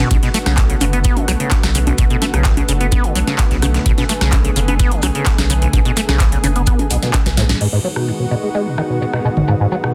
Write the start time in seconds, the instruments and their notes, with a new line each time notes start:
Already playing: analog synth pad B3 F#4
0.11 sub bass B1, acid bass B2, analog synth pad D3 A3, kick, closed hi-hat, high conga, shaker
0.23 acid bass B2, snare, closed hi-hat
0.34 acid bass A3, snare, open hi-hat, shaker
0.46 sub bass B1, acid bass C#3, cross-stick, snare, closed hi-hat, high conga
0.57 acid bass B2, kick, snare, clap, closed hi-hat, shaker
0.70 acid bass C#3, closed hi-hat
0.81 sub bass F#1, acid bass C#3, open hi-hat, high conga, shaker
0.93 acid bass B3, closed hi-hat
1.04 acid bass B3, kick, closed hi-hat, shaker
1.17 acid bass D3, closed hi-hat, high conga
1.28 sub bass B1, acid bass F#3, cross-stick, open hi-hat, shaker
1.40 acid bass C#3, closed hi-hat
1.51 acid bass C#3, kick, snare, clap, closed hi-hat, high conga, shaker
1.63 sub bass B1, acid bass C#3, cross-stick, snare, closed hi-hat
1.75 acid bass C#3, open hi-hat, shaker
1.87 acid bass B1, closed hi-hat, high conga
1.98 sub bass B1, acid bass B2, kick, closed hi-hat, shaker
2.10 acid bass B2, closed hi-hat
2.22 acid bass A3, snare, open hi-hat, high conga, shaker
2.34 sub bass B1, acid bass C#3, cross-stick, closed hi-hat
2.45 acid bass B2, kick, snare, clap, closed hi-hat, shaker
2.57 acid bass C#3, closed hi-hat, high conga
2.68 sub bass F#1, acid bass C#3, open hi-hat, shaker
2.81 acid bass B3, closed hi-hat
2.92 acid bass B3, kick, closed hi-hat, high conga, shaker
3.04 acid bass D3, closed hi-hat
3.15 sub bass B1, acid bass F#3, open hi-hat, shaker
3.27 acid bass C#3, snare, closed hi-hat, high conga
3.39 kick, snare, clap, closed hi-hat, shaker
3.51 sub bass B1, acid bass C#3, snare, closed hi-hat
3.62 acid bass C#3, cross-stick, open hi-hat, high conga, shaker
3.74 acid bass B1, snare, closed hi-hat
3.86 sub bass B1, acid bass B2, analog synth pad G#4, kick, closed hi-hat, shaker
3.97 acid bass B2, snare, closed hi-hat, high conga
4.09 acid bass A3, snare, open hi-hat, shaker
4.21 sub bass B1, acid bass C#3, cross-stick, snare, closed hi-hat
4.32 acid bass B2, kick, snare, clap, closed hi-hat, high conga, shaker
4.45 acid bass C#3, closed hi-hat
4.56 sub bass F#1, acid bass C#3, open hi-hat, shaker
4.68 acid bass B3, closed hi-hat, high conga
4.80 acid bass B3, kick, closed hi-hat, shaker
4.92 acid bass D3, closed hi-hat
5.02 sub bass B1, acid bass F#3, cross-stick, open hi-hat, high conga, shaker
5.15 acid bass C#3, closed hi-hat
5.26 kick, snare, clap, closed hi-hat, shaker
5.38 sub bass B1, acid bass C#3, cross-stick, snare, closed hi-hat, high conga
5.50 acid bass C#3, open hi-hat, shaker
5.62 acid bass B1, closed hi-hat
5.73 sub bass B1, acid bass B2, kick, closed hi-hat, high conga, shaker
5.85 acid bass B2, closed hi-hat
5.97 acid bass A3, snare, open hi-hat, shaker
6.09 sub bass B1, acid bass C#3, cross-stick, snare, closed hi-hat, high conga
6.20 acid bass B2, kick, snare, clap, closed hi-hat, shaker
6.32 acid bass C#3, closed hi-hat
6.44 sub bass F#1, acid bass C#3, open hi-hat, high conga, shaker
6.56 acid bass B3, closed hi-hat
6.67 acid bass B3, kick, closed hi-hat, shaker
6.79 acid bass D3, closed hi-hat, high conga
6.90 sub bass B1, acid bass B2, open hi-hat, shaker
7.03 acid bass B2, snare, closed hi-hat
7.13 acid bass B2, kick, snare, clap, closed hi-hat, high conga, shaker
7.26 sub bass B1, acid bass B2, snare, closed hi-hat
7.37 acid bass A2, snare, open hi-hat, shaker
7.49 acid bass A2, snare, closed hi-hat, high conga
7.61 acid bass G#2, analog synth pad D#3 G#3 B3 F#4, crash, shaker
7.72 acid bass G#2, snare
7.84 acid bass F#3, shaker
7.96 acid bass B2, cross-stick
8.08 acid bass G#2, shaker
8.20 acid bass B2
8.31 acid bass B2, shaker
8.43 acid bass G#3
8.54 acid bass G#3, shaker
8.67 acid bass B2
8.78 acid bass D#3, cross-stick, shaker
8.90 acid bass B2
9.01 acid bass B2, shaker
9.13 acid bass B2, cross-stick, snare
9.25 acid bass B2, shaker
9.37 acid bass G#1, mid tom
9.48 acid bass G#2, shaker
9.60 acid bass G#2
9.72 acid bass F#3, shaker
9.84 acid bass B2, cross-stick